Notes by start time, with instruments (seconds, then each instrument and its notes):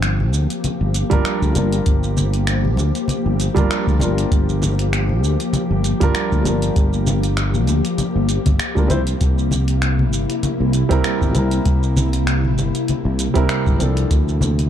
Already playing: fretless electric bass G1, ambient pad F3 A#3 G4
0.02 finger snap, closed hi-hat, shaker
0.20 high conga
0.33 fretless electric bass D2, shaker
0.50 closed hi-hat, shaker
0.64 closed hi-hat, high conga, shaker
0.81 fretless electric bass G1
0.94 closed hi-hat, shaker
1.10 fretless electric bass G1, grand piano G3 D4 F4 A#4, kick, closed hi-hat, high conga, shaker
1.25 finger snap, closed hi-hat, shaker
1.42 fretless electric bass D2, kick, shaker
1.53 fretless electric bass G1, grand piano G3 D4 F4, closed hi-hat, high conga, shaker
1.58 grand piano A#4
1.73 closed hi-hat, shaker
1.86 fretless electric bass G1, kick, closed hi-hat, shaker
2.04 shaker
2.17 muted conga, high conga, shaker
2.34 closed hi-hat, shaker
2.47 finger snap, closed hi-hat, shaker
2.65 high conga
2.77 fretless electric bass D2, muted conga, shaker
2.95 closed hi-hat, shaker
3.08 closed hi-hat, high conga, shaker
3.26 fretless electric bass G1
3.40 closed hi-hat, shaker
3.54 fretless electric bass G1, grand piano G3 D4 F4 A#4, kick, closed hi-hat, muted conga, high conga, shaker
3.71 finger snap, closed hi-hat, shaker
3.87 fretless electric bass D2, kick, shaker
3.98 fretless electric bass G1, grand piano G3 D4, closed hi-hat, muted conga, high conga
4.02 grand piano F4 A#4, shaker
4.18 closed hi-hat, shaker
4.32 fretless electric bass G1, kick, closed hi-hat, shaker
4.49 shaker
4.62 muted conga, high conga, shaker
4.79 closed hi-hat, shaker
4.93 finger snap, closed hi-hat, shaker
5.09 high conga
5.23 fretless electric bass D2, shaker
5.40 closed hi-hat, shaker
5.53 closed hi-hat, high conga, shaker
5.71 fretless electric bass G1
5.84 closed hi-hat, shaker
6.00 fretless electric bass G1, grand piano G3 D4 F4 A#4, kick, closed hi-hat, high conga, shaker
6.15 finger snap, closed hi-hat, shaker
6.32 fretless electric bass D2, kick, shaker
6.43 fretless electric bass G1, grand piano G3 D4 F4, closed hi-hat, high conga, shaker
6.48 grand piano A#4
6.62 closed hi-hat, shaker
6.76 fretless electric bass G1, kick, closed hi-hat, shaker
6.93 shaker
7.07 muted conga, high conga, shaker
7.23 closed hi-hat, shaker
7.37 finger snap, closed hi-hat, shaker
7.54 high conga, shaker
7.67 fretless electric bass D2, closed hi-hat, muted conga, shaker
7.85 closed hi-hat, shaker
7.98 closed hi-hat, high conga, shaker
8.16 fretless electric bass G1
8.29 closed hi-hat, shaker
8.46 fretless electric bass G1, kick, closed hi-hat, muted conga, high conga, shaker
8.60 finger snap, closed hi-hat, shaker
8.75 fretless electric bass D2, grand piano G3 D4 F4 A#4, kick, shaker
8.88 fretless electric bass C2, ambient pad C3 E4, grand piano G3 C4 E4 C5, kick, closed hi-hat, muted conga, high conga, shaker
9.07 closed hi-hat, shaker
9.21 fretless electric bass C2, kick, closed hi-hat, shaker
9.39 shaker
9.51 muted conga, high conga, shaker
9.68 closed hi-hat, shaker
9.82 finger snap, closed hi-hat, shaker
9.99 high conga
10.12 fretless electric bass G1, shaker
10.30 closed hi-hat, shaker
10.43 closed hi-hat, high conga, shaker
10.60 fretless electric bass C2
10.73 closed hi-hat, shaker
10.89 fretless electric bass C2, grand piano G3 C4 E4 A#4, kick, closed hi-hat, high conga, shaker
11.04 finger snap, closed hi-hat, shaker
11.22 fretless electric bass G1, kick, shaker
11.32 fretless electric bass C2, grand piano G3 C4 E4, closed hi-hat, high conga, shaker
11.38 grand piano A#4
11.51 closed hi-hat, shaker
11.66 fretless electric bass C2, kick, closed hi-hat, shaker
11.83 shaker
11.97 muted conga, high conga, shaker
12.13 closed hi-hat, shaker
12.27 finger snap, closed hi-hat, shaker
12.45 high conga
12.58 fretless electric bass G1, muted conga, shaker
12.75 closed hi-hat, shaker
12.88 closed hi-hat, high conga, shaker
13.05 fretless electric bass C2
13.19 closed hi-hat, shaker
13.34 fretless electric bass C2, grand piano G3 C4 E4 A#4, kick, closed hi-hat, muted conga, high conga, shaker
13.49 finger snap, closed hi-hat, shaker
13.67 fretless electric bass G1, kick, shaker
13.77 fretless electric bass C2, grand piano F3 C4 D4, closed hi-hat, muted conga, high conga, shaker
13.83 grand piano A4
13.97 closed hi-hat, shaker
14.10 fretless electric bass D2, ambient pad D3 C4 F4, kick, closed hi-hat, shaker
14.29 shaker
14.41 muted conga, high conga, shaker
14.59 closed hi-hat, shaker